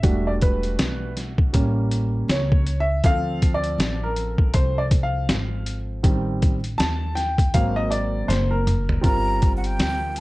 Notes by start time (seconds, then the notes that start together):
Already playing: E5
0.03 E1 G3 A3 D4 F#4, kick, closed hi-hat
0.27 D5
0.41 B4, kick, closed hi-hat
0.63 closed hi-hat
0.79 B1, snare, closed hi-hat
1.17 snare, closed hi-hat
1.38 kick
1.53 A1 G3 A#3 C#4, kick, closed hi-hat
1.91 closed hi-hat
2.28 C#2 C#5, snare, closed hi-hat
2.52 kick
2.67 closed hi-hat
2.80 E5
3.04 D2 F3 C4 A4 F5, kick, closed hi-hat
3.42 kick, closed hi-hat
3.54 D5
3.64 closed hi-hat
3.78 A1, snare, closed hi-hat
4.04 A#4
4.16 closed hi-hat
4.38 kick
4.54 C2 C5, kick, closed hi-hat
4.78 D5
4.91 kick, closed hi-hat
5.03 F5
5.29 G#1, snare, closed hi-hat
5.66 closed hi-hat
6.03 A1 D#3 G3 C4, kick, closed hi-hat
6.42 kick, closed hi-hat
6.64 closed hi-hat
6.78 D#2 A5, snare, closed hi-hat
7.15 G5, snare, closed hi-hat
7.38 kick, closed hi-hat
7.54 G#1 F#3 A#3 C4 F5, kick, closed hi-hat
7.76 D#5
7.91 D5, closed hi-hat
8.28 F#1 C5, snare, closed hi-hat
8.51 A#4
8.67 closed hi-hat, mid tom
8.89 floor tom
9.01 G1 G3 C4 F4 A#4 A#5, kick, closed hi-hat
9.42 kick, closed hi-hat
9.57 F#5
9.64 G5, closed hi-hat
9.79 D2, snare, closed hi-hat
10.16 closed hi-hat